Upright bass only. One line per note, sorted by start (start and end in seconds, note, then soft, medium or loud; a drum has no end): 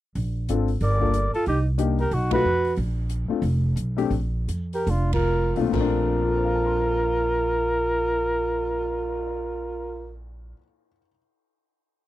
0.15 0.46 A#1 medium
0.49 0.79 G#1 medium
0.81 1.30 G1 medium
1.34 muted upright bass stroke soft
1.47 2.08 C2 medium
2.11 2.42 B1 medium
2.45 2.75 F2 medium
2.77 3.27 A#1 medium
3.30 muted upright bass stroke soft
3.42 3.74 F1 medium
3.76 4.09 B1 medium
4.10 4.45 A#1 medium
4.48 4.85 F2 medium
4.87 5.52 F1 medium
5.56 5.72 B1 medium
5.73 10.52 A#1 medium